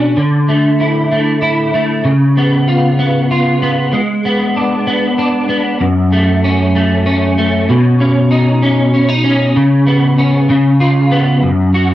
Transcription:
0, 0, Header, 1, 2, 480
1, 0, Start_track
1, 0, Tempo, 626305
1, 131, Time_signature, 6, 3, 24, 8
1, 9152, End_track
2, 0, Start_track
2, 0, Title_t, "Clean electric guitar"
2, 0, Program_c, 0, 27
2, 0, Note_on_c, 0, 47, 67
2, 0, Note_on_c, 0, 61, 54
2, 0, Note_on_c, 0, 62, 50
2, 128, Note_off_c, 0, 47, 0
2, 131, Note_on_c, 0, 50, 65
2, 177, Note_off_c, 0, 62, 0
2, 181, Note_off_c, 0, 61, 0
2, 372, Note_on_c, 0, 57, 54
2, 614, Note_on_c, 0, 64, 50
2, 844, Note_off_c, 0, 57, 0
2, 854, Note_on_c, 0, 57, 51
2, 1077, Note_off_c, 0, 64, 0
2, 1086, Note_on_c, 0, 64, 58
2, 1324, Note_off_c, 0, 57, 0
2, 1333, Note_on_c, 0, 57, 53
2, 1563, Note_off_c, 0, 50, 0
2, 1566, Note_on_c, 0, 49, 64
2, 1617, Note_off_c, 0, 64, 0
2, 1621, Note_off_c, 0, 57, 0
2, 1817, Note_on_c, 0, 59, 53
2, 2053, Note_on_c, 0, 65, 51
2, 2290, Note_off_c, 0, 59, 0
2, 2293, Note_on_c, 0, 59, 50
2, 2528, Note_off_c, 0, 65, 0
2, 2538, Note_on_c, 0, 65, 53
2, 2773, Note_off_c, 0, 59, 0
2, 2776, Note_on_c, 0, 59, 53
2, 3009, Note_off_c, 0, 49, 0
2, 3012, Note_on_c, 0, 56, 62
2, 3062, Note_off_c, 0, 59, 0
2, 3063, Note_off_c, 0, 65, 0
2, 3258, Note_on_c, 0, 59, 51
2, 3497, Note_on_c, 0, 62, 48
2, 3725, Note_off_c, 0, 59, 0
2, 3734, Note_on_c, 0, 59, 52
2, 3964, Note_off_c, 0, 62, 0
2, 3973, Note_on_c, 0, 62, 58
2, 4200, Note_off_c, 0, 59, 0
2, 4209, Note_on_c, 0, 59, 50
2, 4449, Note_on_c, 0, 42, 67
2, 4452, Note_off_c, 0, 56, 0
2, 4499, Note_off_c, 0, 59, 0
2, 4501, Note_off_c, 0, 62, 0
2, 4693, Note_on_c, 0, 57, 53
2, 4937, Note_on_c, 0, 61, 47
2, 5166, Note_off_c, 0, 57, 0
2, 5175, Note_on_c, 0, 57, 56
2, 5407, Note_off_c, 0, 61, 0
2, 5411, Note_on_c, 0, 61, 55
2, 5647, Note_off_c, 0, 57, 0
2, 5656, Note_on_c, 0, 57, 57
2, 5890, Note_off_c, 0, 42, 0
2, 5893, Note_on_c, 0, 47, 72
2, 5942, Note_off_c, 0, 57, 0
2, 6131, Note_off_c, 0, 61, 0
2, 6131, Note_on_c, 0, 61, 55
2, 6364, Note_on_c, 0, 63, 53
2, 6606, Note_off_c, 0, 61, 0
2, 6609, Note_on_c, 0, 61, 57
2, 6847, Note_off_c, 0, 63, 0
2, 6850, Note_off_c, 0, 61, 0
2, 6850, Note_on_c, 0, 61, 56
2, 6962, Note_off_c, 0, 61, 0
2, 6962, Note_on_c, 0, 63, 43
2, 7080, Note_on_c, 0, 61, 56
2, 7323, Note_off_c, 0, 47, 0
2, 7326, Note_on_c, 0, 49, 72
2, 7374, Note_off_c, 0, 63, 0
2, 7557, Note_off_c, 0, 61, 0
2, 7560, Note_on_c, 0, 59, 56
2, 7802, Note_on_c, 0, 61, 56
2, 8034, Note_off_c, 0, 49, 0
2, 8043, Note_on_c, 0, 49, 80
2, 8092, Note_off_c, 0, 59, 0
2, 8275, Note_off_c, 0, 61, 0
2, 8278, Note_on_c, 0, 65, 56
2, 8516, Note_on_c, 0, 59, 59
2, 8756, Note_on_c, 0, 42, 72
2, 8810, Note_off_c, 0, 59, 0
2, 8810, Note_off_c, 0, 65, 0
2, 8813, Note_off_c, 0, 49, 0
2, 9001, Note_on_c, 0, 66, 63
2, 9152, Note_off_c, 0, 42, 0
2, 9152, Note_off_c, 0, 66, 0
2, 9152, End_track
0, 0, End_of_file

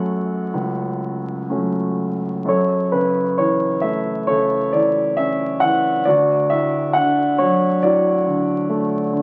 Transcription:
0, 0, Header, 1, 2, 480
1, 0, Start_track
1, 0, Key_signature, 3, "minor"
1, 0, Tempo, 941915
1, 1255, Time_signature, 4, 2, 24, 8
1, 1723, Tempo, 899550
1, 2683, Tempo, 878477
1, 4891, End_track
2, 0, Start_track
2, 0, Title_t, "Grand piano"
2, 0, Program_c, 0, 0
2, 0, Control_c, 0, 64, 127
2, 0, Note_on_c, 0, 42, 60
2, 0, Note_on_c, 0, 54, 49
2, 0, Note_on_c, 0, 57, 44
2, 0, Note_on_c, 0, 61, 54
2, 0, Note_on_c, 0, 69, 66
2, 0, Note_on_c, 0, 78, 84
2, 186, Note_off_c, 0, 54, 0
2, 186, Note_off_c, 0, 57, 0
2, 187, Note_off_c, 0, 61, 0
2, 275, Note_on_c, 0, 37, 59
2, 763, Note_on_c, 0, 54, 44
2, 768, Note_on_c, 0, 57, 41
2, 769, Note_on_c, 0, 61, 50
2, 991, Note_off_c, 0, 78, 0
2, 995, Note_off_c, 0, 69, 0
2, 1155, Note_off_c, 0, 54, 0
2, 1158, Note_off_c, 0, 57, 0
2, 1158, Note_off_c, 0, 61, 0
2, 1232, Note_off_c, 0, 37, 0
2, 1234, Note_off_c, 0, 42, 0
2, 1249, Note_on_c, 0, 42, 53
2, 1255, Note_on_c, 0, 69, 52
2, 1261, Control_c, 0, 64, 0
2, 1266, Note_on_c, 0, 73, 69
2, 1350, Control_c, 0, 64, 127
2, 1488, Note_on_c, 0, 71, 62
2, 1493, Note_on_c, 0, 49, 42
2, 1505, Note_off_c, 0, 73, 0
2, 1722, Note_on_c, 0, 73, 73
2, 1726, Note_on_c, 0, 52, 50
2, 1729, Note_off_c, 0, 71, 0
2, 1945, Note_off_c, 0, 73, 0
2, 1954, Note_on_c, 0, 76, 71
2, 1963, Note_on_c, 0, 57, 42
2, 2182, Note_off_c, 0, 76, 0
2, 2183, Note_off_c, 0, 69, 0
2, 2198, Note_on_c, 0, 73, 80
2, 2201, Note_off_c, 0, 49, 0
2, 2203, Note_on_c, 0, 69, 59
2, 2209, Note_on_c, 0, 49, 48
2, 2436, Note_off_c, 0, 52, 0
2, 2441, Note_on_c, 0, 74, 75
2, 2444, Note_on_c, 0, 52, 46
2, 2449, Note_off_c, 0, 73, 0
2, 2676, Note_on_c, 0, 76, 84
2, 2687, Note_on_c, 0, 61, 51
2, 2688, Note_off_c, 0, 74, 0
2, 2903, Note_off_c, 0, 57, 0
2, 2904, Note_off_c, 0, 76, 0
2, 2913, Note_on_c, 0, 78, 81
2, 2921, Note_off_c, 0, 52, 0
2, 2929, Note_on_c, 0, 52, 49
2, 3140, Note_off_c, 0, 42, 0
2, 3142, Note_off_c, 0, 69, 0
2, 3145, Note_off_c, 0, 49, 0
2, 3153, Note_off_c, 0, 61, 0
2, 3160, Note_off_c, 0, 52, 0
2, 3160, Note_on_c, 0, 74, 87
2, 3166, Note_off_c, 0, 78, 0
2, 3167, Note_on_c, 0, 38, 65
2, 3167, Note_on_c, 0, 66, 63
2, 3171, Control_c, 0, 64, 0
2, 3276, Control_c, 0, 64, 127
2, 3403, Note_on_c, 0, 76, 82
2, 3410, Note_off_c, 0, 74, 0
2, 3410, Note_on_c, 0, 45, 50
2, 3641, Note_on_c, 0, 78, 81
2, 3654, Note_on_c, 0, 50, 56
2, 3655, Note_off_c, 0, 76, 0
2, 3887, Note_on_c, 0, 73, 79
2, 3889, Note_on_c, 0, 54, 49
2, 3894, Note_off_c, 0, 78, 0
2, 4108, Note_off_c, 0, 66, 0
2, 4116, Note_off_c, 0, 45, 0
2, 4124, Note_on_c, 0, 45, 54
2, 4129, Note_on_c, 0, 74, 79
2, 4134, Note_off_c, 0, 73, 0
2, 4139, Note_on_c, 0, 66, 58
2, 4358, Note_off_c, 0, 50, 0
2, 4366, Note_on_c, 0, 50, 51
2, 4603, Note_on_c, 0, 57, 55
2, 4820, Note_off_c, 0, 54, 0
2, 4822, Note_off_c, 0, 74, 0
2, 4832, Note_off_c, 0, 50, 0
2, 4841, Note_on_c, 0, 50, 55
2, 4891, Note_off_c, 0, 38, 0
2, 4891, Note_off_c, 0, 45, 0
2, 4891, Note_off_c, 0, 50, 0
2, 4891, Note_off_c, 0, 57, 0
2, 4891, Note_off_c, 0, 66, 0
2, 4891, End_track
0, 0, End_of_file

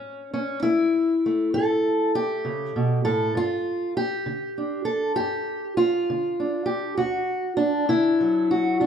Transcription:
0, 0, Header, 1, 2, 480
1, 0, Start_track
1, 0, Tempo, 604839
1, 2667, Time_signature, 12, 3, 24, 8
1, 7034, End_track
2, 0, Start_track
2, 0, Title_t, "Steel-string acoustic guitar"
2, 0, Program_c, 0, 25
2, 0, Note_on_c, 0, 45, 72
2, 0, Note_on_c, 0, 61, 83
2, 211, Note_off_c, 0, 45, 0
2, 257, Note_off_c, 0, 61, 0
2, 266, Note_on_c, 0, 61, 78
2, 493, Note_off_c, 0, 61, 0
2, 496, Note_on_c, 0, 64, 99
2, 507, Note_on_c, 0, 57, 64
2, 938, Note_off_c, 0, 57, 0
2, 999, Note_on_c, 0, 57, 45
2, 1222, Note_on_c, 0, 45, 74
2, 1222, Note_on_c, 0, 69, 104
2, 1657, Note_off_c, 0, 45, 0
2, 1702, Note_off_c, 0, 64, 0
2, 1703, Note_off_c, 0, 69, 0
2, 1708, Note_on_c, 0, 67, 97
2, 1942, Note_on_c, 0, 49, 62
2, 2184, Note_off_c, 0, 49, 0
2, 2189, Note_on_c, 0, 47, 72
2, 2415, Note_off_c, 0, 67, 0
2, 2418, Note_on_c, 0, 69, 106
2, 2419, Note_off_c, 0, 47, 0
2, 2422, Note_on_c, 0, 45, 63
2, 2645, Note_off_c, 0, 57, 0
2, 2658, Note_on_c, 0, 43, 71
2, 2663, Note_off_c, 0, 69, 0
2, 2665, Note_off_c, 0, 45, 0
2, 2676, Note_on_c, 0, 65, 105
2, 3095, Note_off_c, 0, 43, 0
2, 3146, Note_off_c, 0, 65, 0
2, 3149, Note_on_c, 0, 67, 106
2, 3381, Note_on_c, 0, 50, 67
2, 3632, Note_on_c, 0, 62, 47
2, 3816, Note_off_c, 0, 50, 0
2, 3845, Note_off_c, 0, 67, 0
2, 3848, Note_on_c, 0, 69, 97
2, 4090, Note_off_c, 0, 69, 0
2, 4093, Note_on_c, 0, 67, 103
2, 4123, Note_on_c, 0, 43, 76
2, 4547, Note_off_c, 0, 43, 0
2, 4576, Note_off_c, 0, 67, 0
2, 4580, Note_on_c, 0, 65, 100
2, 4839, Note_on_c, 0, 50, 64
2, 5067, Note_off_c, 0, 62, 0
2, 5077, Note_on_c, 0, 62, 53
2, 5265, Note_off_c, 0, 50, 0
2, 5280, Note_off_c, 0, 65, 0
2, 5283, Note_on_c, 0, 67, 89
2, 5523, Note_off_c, 0, 62, 0
2, 5532, Note_off_c, 0, 67, 0
2, 5535, Note_on_c, 0, 66, 100
2, 5542, Note_on_c, 0, 38, 76
2, 5976, Note_off_c, 0, 38, 0
2, 6003, Note_off_c, 0, 66, 0
2, 6006, Note_on_c, 0, 62, 87
2, 6261, Note_on_c, 0, 64, 94
2, 6267, Note_on_c, 0, 50, 67
2, 6513, Note_on_c, 0, 54, 50
2, 6698, Note_off_c, 0, 50, 0
2, 6735, Note_off_c, 0, 62, 0
2, 6753, Note_on_c, 0, 66, 84
2, 6984, Note_on_c, 0, 38, 72
2, 6986, Note_off_c, 0, 66, 0
2, 6990, Note_on_c, 0, 62, 76
2, 7034, Note_off_c, 0, 38, 0
2, 7034, Note_off_c, 0, 54, 0
2, 7034, Note_off_c, 0, 62, 0
2, 7034, Note_off_c, 0, 64, 0
2, 7034, End_track
0, 0, End_of_file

